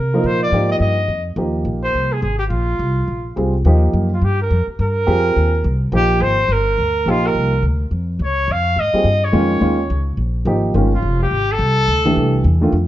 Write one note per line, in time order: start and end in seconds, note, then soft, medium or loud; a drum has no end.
0.00 0.23 C3 medium
0.00 0.28 A#4 medium
0.14 0.51 F3 medium
0.14 0.51 A#3 medium
0.14 0.51 D#4 medium
0.14 0.51 A#4 medium
0.24 0.51 A#2 medium
0.24 0.42 C5 loud
0.43 0.69 D5 medium
0.52 0.79 G#2 medium
0.52 0.95 F3 medium
0.52 0.95 A#3 medium
0.52 0.95 D#4 medium
0.52 0.96 G4 medium
0.71 0.76 D#5 medium
0.80 1.08 G2 medium
0.80 1.24 D#5 loud
1.08 1.36 F2 medium
1.36 1.64 D#2 medium
1.36 2.16 F3 medium
1.36 2.16 A#3 medium
1.36 2.17 D#4 soft
1.36 2.17 G4 medium
1.65 1.93 A#1 medium
1.84 2.14 C5 loud
1.94 2.22 C2 medium
2.12 2.22 G#4 medium
2.22 2.50 G#1 medium
2.22 2.38 G#4 medium
2.39 2.44 G4 medium
2.50 2.79 A#1 medium
2.50 3.32 F4 medium
2.79 3.07 C2 medium
3.08 3.36 A#1 medium
3.36 3.64 C2 medium
3.36 3.52 G3 medium
3.36 3.53 C4 medium
3.36 3.53 F4 medium
3.36 3.53 G#4 medium
3.65 3.93 D#2 medium
3.65 4.08 F3 medium
3.65 4.08 A#3 medium
3.65 4.08 D#4 medium
3.65 4.08 G4 medium
3.93 4.21 F#2 medium
4.14 4.26 F4 medium
4.22 4.50 G2 medium
4.22 4.41 G4 medium
4.42 4.67 A#4 medium
4.50 4.67 F2 medium
4.67 muted upright bass stroke soft
4.79 5.07 G2 medium
4.79 5.79 A#4 loud
5.07 5.35 F2 medium
5.07 5.50 C4 medium
5.07 5.50 F4 medium
5.07 5.50 G4 medium
5.07 5.50 G#4 medium
5.36 5.64 D#2 medium
5.64 5.92 C2 medium
5.92 6.20 A#1 medium
5.92 6.35 F3 medium
5.92 6.35 A#3 medium
5.92 6.35 D#4 medium
5.92 6.36 G4 medium
5.92 6.23 G4 loud
6.20 6.48 G#1 medium
6.20 6.54 C5 loud
6.49 6.77 G1 medium
6.49 7.11 A#4 loud
6.78 7.05 D2 medium
7.06 7.34 A#1 medium
7.06 7.49 F3 medium
7.06 7.49 A#3 medium
7.06 7.49 D#4 medium
7.06 7.28 F4 loud
7.06 7.50 G4 medium
7.27 7.65 A#4 loud
7.35 7.62 C2 medium
7.62 7.91 D2 medium
7.91 8.19 F2 medium
8.19 8.47 C#2 medium
8.19 8.53 C#5 medium
8.48 8.76 F2 medium
8.52 8.81 F5 loud
8.76 8.93 G#2 medium
8.76 9.26 D#5 loud
8.93 9.04 G3 medium
8.93 9.04 C4 medium
8.93 9.04 F4 medium
8.93 9.05 G#4 medium
8.93 muted upright bass stroke soft
9.04 9.32 G2 medium
9.25 10.08 C#5 medium
9.32 9.61 F2 medium
9.32 9.59 D#3 medium
9.32 9.59 G#3 medium
9.32 9.60 C#4 medium
9.32 9.60 F4 medium
9.60 9.89 D#2 medium
9.60 9.77 D#3 medium
9.60 9.77 G#3 medium
9.60 9.77 C#4 medium
9.60 9.77 F4 medium
9.90 10.17 C#2 medium
10.17 10.45 A#1 medium
10.45 10.73 G#1 medium
10.45 10.73 F3 medium
10.45 10.74 A#3 medium
10.45 10.74 D#4 medium
10.45 10.74 G4 medium
10.74 11.02 G1 medium
10.74 10.90 D#3 medium
10.74 10.90 G#3 medium
10.74 10.91 C#4 medium
10.74 10.91 F4 medium
10.94 11.19 F4 medium
11.02 11.30 F1 medium
11.23 11.54 G4 loud
11.31 11.58 G#1 medium
11.52 12.46 A4 loud
11.59 11.87 C2 medium
11.88 12.15 D2 medium
12.05 12.43 E3 medium
12.05 12.43 A3 medium
12.05 12.43 D4 medium
12.05 12.43 G4 medium
12.16 12.44 C2 medium
12.44 12.72 E2 medium
12.61 12.72 D#3 medium
12.61 12.72 A3 medium
12.61 12.72 D4 medium
12.61 12.72 F4 medium
12.72 12.88 F2 medium